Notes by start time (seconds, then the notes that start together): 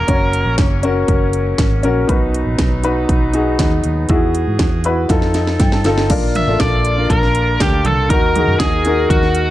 Already playing: F#3 A#3 C#4 F#4 G#4 A#4
0.08 F#1 C#4 F#4 C#5, kick, closed hi-hat
0.33 closed hi-hat
0.46 A#1
0.58 F#1, kick, snare, closed hi-hat
0.83 C#4 F#4 A#4, closed hi-hat
1.08 F#1, kick, closed hi-hat
1.33 closed hi-hat
1.58 G#1, kick, snare, closed hi-hat
1.83 A#1 C#4 F#4 A#4, closed hi-hat
2.07 B1 B2 F#3 B3 D#4 F#4 B4, kick, closed hi-hat
2.34 closed hi-hat
2.47 A#1
2.59 B1, kick, snare, closed hi-hat
2.83 D#4 F#4 B4, closed hi-hat
3.09 B1, kick, closed hi-hat
3.33 D#4 F#4 G#4, closed hi-hat
3.59 D#2, kick, snare, closed hi-hat
3.84 D#2, closed hi-hat
4.09 E2 E3 E4 F#4 G#4, kick, closed hi-hat
4.35 closed hi-hat
4.47 G#2
4.59 E2, kick, snare, closed hi-hat
4.84 E4 F#4 B4, closed hi-hat
5.09 F2 F3 C4 D#4 F4 A4, kick, snare, closed hi-hat
5.22 snare
5.34 D#5, snare, closed hi-hat
5.47 snare
5.60 G2 G5, kick, snare, closed hi-hat
5.72 A5, snare
5.84 G1 D#4 F4 A4, snare, closed hi-hat
5.98 snare
6.10 A#1 A#2 A#3 D4 F4 A#4, kick, closed hi-hat, crash
6.35 E5, closed hi-hat, floor tom
6.47 A1 D4 F4 A4
6.60 A#1 D5, kick, snare, closed hi-hat
6.85 closed hi-hat
6.97 D4 F4 A#4
7.10 A#1 A#4, kick, closed hi-hat
7.23 snare
7.35 closed hi-hat
7.60 D2 G4, kick, snare, closed hi-hat
7.85 C2 A4, closed hi-hat, floor tom
8.09 D#2 D#3 D#4 F#4 A#4, kick, closed hi-hat
8.35 D#4 F#4 G#4, closed hi-hat, floor tom
8.48 F#2
8.59 D#2 G#4, kick, snare, closed hi-hat
8.85 D#4 F#4 A#4, closed hi-hat
9.10 D#2 F#4, kick, closed hi-hat
9.23 snare
9.35 closed hi-hat